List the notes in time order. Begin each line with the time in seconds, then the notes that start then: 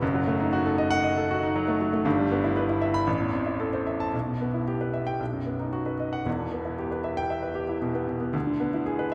0.02 F#1 F#2
0.14 F#3
0.27 A3
0.40 D#4
0.53 F#4
0.66 A4
0.78 D#5
0.91 F#5
1.04 D#5
1.17 A4
1.31 F#4
1.43 D#4
1.56 F#3
1.68 A3
1.81 F#3
1.93 A3
2.05 G1 G2
2.19 G3
2.31 B3
2.44 E4
2.57 B4
2.69 E4
2.81 E5
2.94 B5
3.07 A1
3.20 E2
3.33 C4
3.46 E4
3.60 A4
3.73 C5
3.86 E5
4.00 A5
4.14 B1
4.27 B2
4.41 B3
4.54 E4
4.68 G4
4.81 B4
4.94 E5
5.07 G5
5.20 B1
5.33 F#2
5.46 B3
5.60 D#4
5.73 F#4
5.86 B4
6.00 D#5
6.13 F#5
6.25 E1 E2
6.39 B2
6.53 B3
6.65 E4
6.79 G4
6.91 B4
7.04 E5
7.17 G5
7.30 E5
7.43 B4
7.55 G4
7.69 E4
7.82 B2
7.94 B3
8.07 B2
8.21 B3
8.33 D2
8.47 D3
8.60 B3
8.74 E4
8.86 G#4
8.99 B4